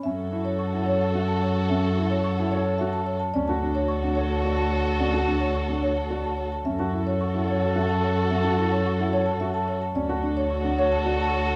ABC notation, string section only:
X:1
M:3/4
L:1/16
Q:1/4=109
K:F#m
V:1 name="String section"
[FA]12- | [FA]8- [FA]3 z | [FA]12- | [FA]8- [FA]3 z |
[FA]12- | [FA]8- [FA]3 z | [FA]12 |]